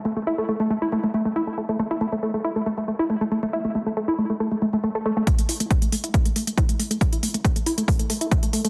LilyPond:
<<
  \new Staff \with { instrumentName = "Synth arpeggio sound" } { \time 4/4 \key c \mixolydian \tempo 4 = 138 a16 a16 e'16 a16 a16 a16 a16 e'16 a16 a16 a16 a16 e'16 a16 a16 a16 | a16 e'16 a16 a16 a16 a16 e'16 a16 a16 a16 a16 e'16 a16 a16 a16 a16 | e'16 a16 a16 a16 a16 e'16 a16 a16 a16 a16 a16 a16 a16 a16 a16 a16 | a16 a16 e'16 a16 a16 a16 a16 e'16 a16 a16 a16 a16 e'16 a16 a16 a16 |
a16 e'16 a16 a16 a16 a16 e'16 a16 a16 a16 a16 e'16 a16 a16 a16 a16 | }
  \new DrumStaff \with { instrumentName = "Drums" } \drummode { \time 4/4 r4 r4 r4 r4 | r4 r4 r4 r4 | r4 r4 r4 r4 | <hh bd>16 hh16 hho16 hh16 <hh bd>16 hh16 hho16 hh16 <hh bd>16 hh16 hho16 hh16 <hh bd>16 hh16 hho16 hh16 |
<hh bd>16 hh16 hho16 hh16 <hh bd>16 hh16 hho16 hh16 <hho bd>16 hh16 hho16 hh16 <hh bd>16 hh16 hho16 hh16 | }
>>